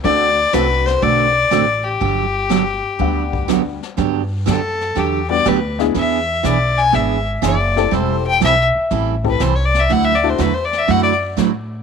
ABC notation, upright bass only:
X:1
M:4/4
L:1/8
Q:"Swing" 1/4=122
K:G
V:1 name="Upright bass" clef=bass
D,,2 C,,2 B,,,2 A,,,2 | G,,,4 D,,4 | G,,2 F,,2 E,,2 D,,2 | E,,2 B,,,2 ^G,,,2 F,,,2 |
E,,,2 B,,, z A,,,2 C,,2 | D,,2 E,,2 F,,2 A,,2 |]